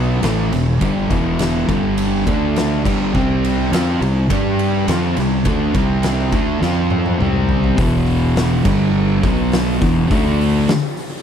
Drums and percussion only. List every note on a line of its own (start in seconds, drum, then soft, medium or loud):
0.23 snare loud
0.23 ride loud
0.53 snare soft
0.53 ride medium
0.81 kick loud
0.81 ride medium
1.11 kick loud
1.11 ride medium
1.39 snare loud
1.39 ride loud
1.69 kick loud
1.69 ride medium
1.98 ride loud
2.27 kick loud
2.27 ride medium
2.56 snare loud
2.56 ride medium
2.85 kick loud
2.85 crash loud
3.15 kick loud
3.44 ride medium
3.73 snare loud
3.73 ride loud
4.02 ride medium
4.30 kick loud
4.30 ride loud
4.59 ride medium
4.88 snare loud
4.88 ride loud
5.17 snare soft
5.17 ride medium
5.45 kick loud
5.45 ride loud
5.74 kick loud
5.74 ride medium
6.03 snare loud
6.03 ride loud
6.32 kick loud
6.32 ride medium
6.62 snare medium
6.90 high tom medium
7.06 high tom medium
7.21 mid tom medium
7.49 floor tom loud
7.64 floor tom loud
7.78 kick loud
7.78 open hi-hat medium
8.06 open hi-hat medium
8.36 snare loud
8.36 open hi-hat medium
8.65 kick loud
8.65 crash loud
9.23 kick loud
9.23 open hi-hat medium
9.52 snare loud
9.52 open hi-hat medium
9.82 kick loud
9.82 open hi-hat medium
10.11 kick loud
10.11 open hi-hat medium
10.41 open hi-hat medium
10.68 snare loud
10.68 open hi-hat medium
10.97 open hi-hat medium